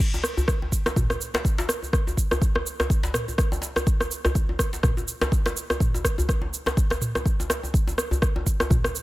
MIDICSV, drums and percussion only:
0, 0, Header, 1, 3, 480
1, 0, Start_track
1, 0, Time_signature, 4, 2, 24, 8
1, 0, Tempo, 483871
1, 8952, End_track
2, 0, Start_track
2, 0, Title_t, "Djembe"
2, 139, Note_on_c, 9, 63, 87
2, 238, Note_off_c, 9, 63, 0
2, 370, Note_on_c, 9, 64, 91
2, 374, Note_on_c, 9, 63, 66
2, 470, Note_off_c, 9, 64, 0
2, 473, Note_off_c, 9, 63, 0
2, 618, Note_on_c, 9, 63, 82
2, 717, Note_off_c, 9, 63, 0
2, 853, Note_on_c, 9, 63, 91
2, 859, Note_on_c, 9, 62, 80
2, 952, Note_off_c, 9, 63, 0
2, 958, Note_off_c, 9, 62, 0
2, 959, Note_on_c, 9, 64, 82
2, 1058, Note_off_c, 9, 64, 0
2, 1092, Note_on_c, 9, 63, 62
2, 1191, Note_off_c, 9, 63, 0
2, 1329, Note_on_c, 9, 63, 79
2, 1335, Note_on_c, 9, 62, 108
2, 1429, Note_off_c, 9, 63, 0
2, 1434, Note_off_c, 9, 62, 0
2, 1571, Note_on_c, 9, 62, 106
2, 1577, Note_on_c, 9, 63, 84
2, 1671, Note_off_c, 9, 62, 0
2, 1676, Note_off_c, 9, 63, 0
2, 1811, Note_on_c, 9, 63, 60
2, 1910, Note_off_c, 9, 63, 0
2, 2056, Note_on_c, 9, 63, 88
2, 2155, Note_off_c, 9, 63, 0
2, 2293, Note_on_c, 9, 63, 91
2, 2299, Note_on_c, 9, 64, 96
2, 2392, Note_off_c, 9, 63, 0
2, 2398, Note_off_c, 9, 64, 0
2, 2532, Note_on_c, 9, 63, 71
2, 2631, Note_off_c, 9, 63, 0
2, 2775, Note_on_c, 9, 62, 69
2, 2776, Note_on_c, 9, 63, 94
2, 2874, Note_off_c, 9, 62, 0
2, 2875, Note_off_c, 9, 63, 0
2, 3009, Note_on_c, 9, 62, 83
2, 3011, Note_on_c, 9, 63, 92
2, 3109, Note_off_c, 9, 62, 0
2, 3110, Note_off_c, 9, 63, 0
2, 3255, Note_on_c, 9, 63, 59
2, 3354, Note_off_c, 9, 63, 0
2, 3491, Note_on_c, 9, 63, 91
2, 3588, Note_on_c, 9, 62, 73
2, 3590, Note_off_c, 9, 63, 0
2, 3687, Note_off_c, 9, 62, 0
2, 3730, Note_on_c, 9, 63, 93
2, 3829, Note_off_c, 9, 63, 0
2, 3970, Note_on_c, 9, 63, 73
2, 4069, Note_off_c, 9, 63, 0
2, 4218, Note_on_c, 9, 64, 89
2, 4221, Note_on_c, 9, 63, 99
2, 4318, Note_off_c, 9, 64, 0
2, 4320, Note_off_c, 9, 63, 0
2, 4455, Note_on_c, 9, 63, 88
2, 4554, Note_off_c, 9, 63, 0
2, 4692, Note_on_c, 9, 62, 77
2, 4697, Note_on_c, 9, 63, 64
2, 4791, Note_off_c, 9, 62, 0
2, 4793, Note_on_c, 9, 64, 79
2, 4796, Note_off_c, 9, 63, 0
2, 4892, Note_off_c, 9, 64, 0
2, 4932, Note_on_c, 9, 63, 92
2, 5031, Note_off_c, 9, 63, 0
2, 5172, Note_on_c, 9, 63, 98
2, 5173, Note_on_c, 9, 62, 100
2, 5272, Note_off_c, 9, 62, 0
2, 5272, Note_off_c, 9, 63, 0
2, 5413, Note_on_c, 9, 62, 99
2, 5418, Note_on_c, 9, 63, 70
2, 5512, Note_off_c, 9, 62, 0
2, 5518, Note_off_c, 9, 63, 0
2, 5655, Note_on_c, 9, 63, 93
2, 5754, Note_off_c, 9, 63, 0
2, 5897, Note_on_c, 9, 63, 93
2, 5996, Note_off_c, 9, 63, 0
2, 6132, Note_on_c, 9, 63, 66
2, 6135, Note_on_c, 9, 64, 93
2, 6231, Note_off_c, 9, 63, 0
2, 6234, Note_off_c, 9, 64, 0
2, 6364, Note_on_c, 9, 63, 89
2, 6463, Note_off_c, 9, 63, 0
2, 6609, Note_on_c, 9, 63, 99
2, 6614, Note_on_c, 9, 62, 73
2, 6708, Note_off_c, 9, 63, 0
2, 6713, Note_off_c, 9, 62, 0
2, 6847, Note_on_c, 9, 63, 70
2, 6849, Note_on_c, 9, 62, 75
2, 6946, Note_off_c, 9, 63, 0
2, 6948, Note_off_c, 9, 62, 0
2, 7097, Note_on_c, 9, 63, 97
2, 7197, Note_off_c, 9, 63, 0
2, 7339, Note_on_c, 9, 63, 90
2, 7438, Note_off_c, 9, 63, 0
2, 7439, Note_on_c, 9, 62, 76
2, 7538, Note_off_c, 9, 62, 0
2, 7573, Note_on_c, 9, 63, 63
2, 7672, Note_off_c, 9, 63, 0
2, 7812, Note_on_c, 9, 63, 90
2, 7911, Note_off_c, 9, 63, 0
2, 8047, Note_on_c, 9, 64, 86
2, 8051, Note_on_c, 9, 63, 69
2, 8146, Note_off_c, 9, 64, 0
2, 8151, Note_off_c, 9, 63, 0
2, 8292, Note_on_c, 9, 63, 95
2, 8391, Note_off_c, 9, 63, 0
2, 8532, Note_on_c, 9, 62, 70
2, 8535, Note_on_c, 9, 63, 93
2, 8631, Note_on_c, 9, 64, 85
2, 8632, Note_off_c, 9, 62, 0
2, 8634, Note_off_c, 9, 63, 0
2, 8731, Note_off_c, 9, 64, 0
2, 8780, Note_on_c, 9, 63, 58
2, 8879, Note_off_c, 9, 63, 0
2, 8952, End_track
3, 0, Start_track
3, 0, Title_t, "Drums"
3, 0, Note_on_c, 9, 36, 107
3, 0, Note_on_c, 9, 49, 91
3, 2, Note_on_c, 9, 82, 50
3, 95, Note_off_c, 9, 36, 0
3, 95, Note_off_c, 9, 49, 0
3, 101, Note_off_c, 9, 82, 0
3, 139, Note_on_c, 9, 82, 34
3, 234, Note_on_c, 9, 37, 89
3, 238, Note_off_c, 9, 82, 0
3, 240, Note_on_c, 9, 82, 84
3, 333, Note_off_c, 9, 37, 0
3, 339, Note_off_c, 9, 82, 0
3, 378, Note_on_c, 9, 82, 38
3, 474, Note_on_c, 9, 37, 78
3, 476, Note_on_c, 9, 36, 108
3, 477, Note_off_c, 9, 82, 0
3, 480, Note_on_c, 9, 82, 51
3, 573, Note_off_c, 9, 37, 0
3, 575, Note_off_c, 9, 36, 0
3, 579, Note_off_c, 9, 82, 0
3, 716, Note_on_c, 9, 36, 56
3, 720, Note_on_c, 9, 82, 85
3, 815, Note_off_c, 9, 36, 0
3, 819, Note_off_c, 9, 82, 0
3, 854, Note_on_c, 9, 37, 90
3, 860, Note_on_c, 9, 82, 36
3, 953, Note_off_c, 9, 37, 0
3, 956, Note_on_c, 9, 36, 110
3, 956, Note_on_c, 9, 45, 89
3, 959, Note_off_c, 9, 82, 0
3, 962, Note_on_c, 9, 82, 51
3, 1055, Note_off_c, 9, 36, 0
3, 1055, Note_off_c, 9, 45, 0
3, 1061, Note_off_c, 9, 82, 0
3, 1092, Note_on_c, 9, 37, 77
3, 1098, Note_on_c, 9, 82, 34
3, 1191, Note_off_c, 9, 37, 0
3, 1197, Note_off_c, 9, 82, 0
3, 1201, Note_on_c, 9, 82, 89
3, 1300, Note_off_c, 9, 82, 0
3, 1335, Note_on_c, 9, 37, 92
3, 1342, Note_on_c, 9, 82, 37
3, 1435, Note_off_c, 9, 37, 0
3, 1436, Note_on_c, 9, 36, 110
3, 1441, Note_off_c, 9, 82, 0
3, 1443, Note_on_c, 9, 82, 50
3, 1535, Note_off_c, 9, 36, 0
3, 1542, Note_off_c, 9, 82, 0
3, 1580, Note_on_c, 9, 82, 35
3, 1675, Note_on_c, 9, 37, 92
3, 1679, Note_off_c, 9, 82, 0
3, 1681, Note_on_c, 9, 82, 91
3, 1774, Note_off_c, 9, 37, 0
3, 1780, Note_off_c, 9, 82, 0
3, 1822, Note_on_c, 9, 82, 35
3, 1916, Note_on_c, 9, 36, 113
3, 1916, Note_on_c, 9, 37, 78
3, 1921, Note_off_c, 9, 82, 0
3, 1923, Note_on_c, 9, 82, 51
3, 2015, Note_off_c, 9, 36, 0
3, 2016, Note_off_c, 9, 37, 0
3, 2022, Note_off_c, 9, 82, 0
3, 2062, Note_on_c, 9, 82, 35
3, 2156, Note_on_c, 9, 36, 59
3, 2161, Note_off_c, 9, 82, 0
3, 2164, Note_on_c, 9, 82, 90
3, 2255, Note_off_c, 9, 36, 0
3, 2263, Note_off_c, 9, 82, 0
3, 2295, Note_on_c, 9, 37, 89
3, 2302, Note_on_c, 9, 82, 39
3, 2394, Note_off_c, 9, 37, 0
3, 2396, Note_on_c, 9, 36, 118
3, 2401, Note_off_c, 9, 82, 0
3, 2403, Note_on_c, 9, 82, 51
3, 2495, Note_off_c, 9, 36, 0
3, 2502, Note_off_c, 9, 82, 0
3, 2536, Note_on_c, 9, 37, 76
3, 2635, Note_off_c, 9, 37, 0
3, 2644, Note_on_c, 9, 82, 87
3, 2743, Note_off_c, 9, 82, 0
3, 2775, Note_on_c, 9, 37, 89
3, 2782, Note_on_c, 9, 82, 37
3, 2875, Note_off_c, 9, 37, 0
3, 2877, Note_on_c, 9, 36, 112
3, 2881, Note_off_c, 9, 82, 0
3, 2883, Note_on_c, 9, 82, 50
3, 2976, Note_off_c, 9, 36, 0
3, 2982, Note_off_c, 9, 82, 0
3, 3020, Note_on_c, 9, 82, 36
3, 3116, Note_on_c, 9, 37, 92
3, 3116, Note_on_c, 9, 45, 73
3, 3119, Note_off_c, 9, 82, 0
3, 3122, Note_on_c, 9, 82, 93
3, 3215, Note_off_c, 9, 37, 0
3, 3215, Note_off_c, 9, 45, 0
3, 3221, Note_off_c, 9, 82, 0
3, 3259, Note_on_c, 9, 82, 39
3, 3355, Note_on_c, 9, 37, 81
3, 3357, Note_on_c, 9, 36, 113
3, 3358, Note_off_c, 9, 82, 0
3, 3361, Note_on_c, 9, 82, 51
3, 3454, Note_off_c, 9, 37, 0
3, 3456, Note_off_c, 9, 36, 0
3, 3460, Note_off_c, 9, 82, 0
3, 3500, Note_on_c, 9, 82, 36
3, 3599, Note_off_c, 9, 82, 0
3, 3601, Note_on_c, 9, 82, 92
3, 3700, Note_off_c, 9, 82, 0
3, 3733, Note_on_c, 9, 37, 90
3, 3740, Note_on_c, 9, 82, 39
3, 3832, Note_off_c, 9, 37, 0
3, 3837, Note_on_c, 9, 36, 117
3, 3839, Note_off_c, 9, 82, 0
3, 3841, Note_on_c, 9, 82, 52
3, 3936, Note_off_c, 9, 36, 0
3, 3940, Note_off_c, 9, 82, 0
3, 3973, Note_on_c, 9, 37, 75
3, 3980, Note_on_c, 9, 82, 36
3, 4072, Note_off_c, 9, 37, 0
3, 4079, Note_off_c, 9, 82, 0
3, 4080, Note_on_c, 9, 82, 88
3, 4179, Note_off_c, 9, 82, 0
3, 4212, Note_on_c, 9, 37, 91
3, 4218, Note_on_c, 9, 82, 40
3, 4311, Note_off_c, 9, 37, 0
3, 4317, Note_on_c, 9, 36, 118
3, 4318, Note_off_c, 9, 82, 0
3, 4320, Note_on_c, 9, 82, 54
3, 4416, Note_off_c, 9, 36, 0
3, 4419, Note_off_c, 9, 82, 0
3, 4554, Note_on_c, 9, 37, 86
3, 4557, Note_on_c, 9, 36, 61
3, 4560, Note_on_c, 9, 82, 91
3, 4653, Note_off_c, 9, 37, 0
3, 4656, Note_off_c, 9, 36, 0
3, 4660, Note_off_c, 9, 82, 0
3, 4699, Note_on_c, 9, 82, 39
3, 4794, Note_on_c, 9, 37, 78
3, 4794, Note_on_c, 9, 45, 84
3, 4797, Note_on_c, 9, 36, 122
3, 4798, Note_off_c, 9, 82, 0
3, 4800, Note_on_c, 9, 82, 54
3, 4893, Note_off_c, 9, 37, 0
3, 4893, Note_off_c, 9, 45, 0
3, 4896, Note_off_c, 9, 36, 0
3, 4899, Note_off_c, 9, 82, 0
3, 4939, Note_on_c, 9, 82, 37
3, 5039, Note_off_c, 9, 82, 0
3, 5039, Note_on_c, 9, 82, 93
3, 5138, Note_off_c, 9, 82, 0
3, 5173, Note_on_c, 9, 37, 96
3, 5180, Note_on_c, 9, 82, 41
3, 5272, Note_off_c, 9, 37, 0
3, 5277, Note_on_c, 9, 36, 119
3, 5279, Note_off_c, 9, 82, 0
3, 5283, Note_on_c, 9, 82, 54
3, 5376, Note_off_c, 9, 36, 0
3, 5382, Note_off_c, 9, 82, 0
3, 5417, Note_on_c, 9, 37, 77
3, 5423, Note_on_c, 9, 82, 35
3, 5516, Note_off_c, 9, 37, 0
3, 5522, Note_off_c, 9, 82, 0
3, 5523, Note_on_c, 9, 82, 96
3, 5622, Note_off_c, 9, 82, 0
3, 5655, Note_on_c, 9, 37, 90
3, 5661, Note_on_c, 9, 82, 38
3, 5754, Note_off_c, 9, 37, 0
3, 5757, Note_on_c, 9, 36, 116
3, 5758, Note_on_c, 9, 45, 80
3, 5760, Note_off_c, 9, 82, 0
3, 5764, Note_on_c, 9, 82, 52
3, 5856, Note_off_c, 9, 36, 0
3, 5857, Note_off_c, 9, 45, 0
3, 5863, Note_off_c, 9, 82, 0
3, 5904, Note_on_c, 9, 82, 35
3, 5997, Note_on_c, 9, 36, 60
3, 5997, Note_on_c, 9, 37, 88
3, 6003, Note_off_c, 9, 82, 0
3, 6004, Note_on_c, 9, 82, 87
3, 6096, Note_off_c, 9, 36, 0
3, 6097, Note_off_c, 9, 37, 0
3, 6103, Note_off_c, 9, 82, 0
3, 6142, Note_on_c, 9, 82, 40
3, 6237, Note_on_c, 9, 36, 118
3, 6239, Note_on_c, 9, 37, 76
3, 6241, Note_off_c, 9, 82, 0
3, 6245, Note_on_c, 9, 82, 53
3, 6336, Note_off_c, 9, 36, 0
3, 6338, Note_off_c, 9, 37, 0
3, 6345, Note_off_c, 9, 82, 0
3, 6485, Note_on_c, 9, 82, 91
3, 6584, Note_off_c, 9, 82, 0
3, 6617, Note_on_c, 9, 37, 88
3, 6623, Note_on_c, 9, 82, 37
3, 6716, Note_off_c, 9, 37, 0
3, 6717, Note_on_c, 9, 36, 116
3, 6722, Note_off_c, 9, 82, 0
3, 6722, Note_on_c, 9, 82, 53
3, 6816, Note_off_c, 9, 36, 0
3, 6822, Note_off_c, 9, 82, 0
3, 6856, Note_on_c, 9, 37, 73
3, 6862, Note_on_c, 9, 82, 36
3, 6955, Note_off_c, 9, 37, 0
3, 6957, Note_on_c, 9, 45, 75
3, 6961, Note_off_c, 9, 82, 0
3, 6963, Note_on_c, 9, 82, 91
3, 7056, Note_off_c, 9, 45, 0
3, 7062, Note_off_c, 9, 82, 0
3, 7096, Note_on_c, 9, 37, 86
3, 7102, Note_on_c, 9, 82, 40
3, 7195, Note_off_c, 9, 37, 0
3, 7197, Note_on_c, 9, 36, 113
3, 7201, Note_off_c, 9, 82, 0
3, 7205, Note_on_c, 9, 82, 52
3, 7296, Note_off_c, 9, 36, 0
3, 7304, Note_off_c, 9, 82, 0
3, 7343, Note_on_c, 9, 82, 36
3, 7438, Note_on_c, 9, 37, 91
3, 7442, Note_off_c, 9, 82, 0
3, 7445, Note_on_c, 9, 82, 92
3, 7538, Note_off_c, 9, 37, 0
3, 7544, Note_off_c, 9, 82, 0
3, 7583, Note_on_c, 9, 82, 38
3, 7677, Note_on_c, 9, 36, 109
3, 7682, Note_off_c, 9, 82, 0
3, 7684, Note_on_c, 9, 82, 51
3, 7776, Note_off_c, 9, 36, 0
3, 7783, Note_off_c, 9, 82, 0
3, 7821, Note_on_c, 9, 82, 34
3, 7916, Note_on_c, 9, 37, 82
3, 7921, Note_off_c, 9, 82, 0
3, 7922, Note_on_c, 9, 82, 88
3, 8015, Note_off_c, 9, 37, 0
3, 8022, Note_off_c, 9, 82, 0
3, 8062, Note_on_c, 9, 82, 37
3, 8155, Note_on_c, 9, 37, 73
3, 8157, Note_on_c, 9, 36, 112
3, 8161, Note_off_c, 9, 82, 0
3, 8161, Note_on_c, 9, 82, 51
3, 8254, Note_off_c, 9, 37, 0
3, 8256, Note_off_c, 9, 36, 0
3, 8260, Note_off_c, 9, 82, 0
3, 8397, Note_on_c, 9, 36, 60
3, 8401, Note_on_c, 9, 82, 87
3, 8496, Note_off_c, 9, 36, 0
3, 8500, Note_off_c, 9, 82, 0
3, 8532, Note_on_c, 9, 37, 82
3, 8539, Note_on_c, 9, 82, 36
3, 8632, Note_off_c, 9, 37, 0
3, 8635, Note_on_c, 9, 45, 89
3, 8637, Note_on_c, 9, 36, 111
3, 8638, Note_off_c, 9, 82, 0
3, 8641, Note_on_c, 9, 82, 51
3, 8734, Note_off_c, 9, 45, 0
3, 8736, Note_off_c, 9, 36, 0
3, 8741, Note_off_c, 9, 82, 0
3, 8774, Note_on_c, 9, 37, 74
3, 8780, Note_on_c, 9, 82, 36
3, 8873, Note_off_c, 9, 37, 0
3, 8879, Note_off_c, 9, 82, 0
3, 8882, Note_on_c, 9, 82, 90
3, 8952, Note_off_c, 9, 82, 0
3, 8952, End_track
0, 0, End_of_file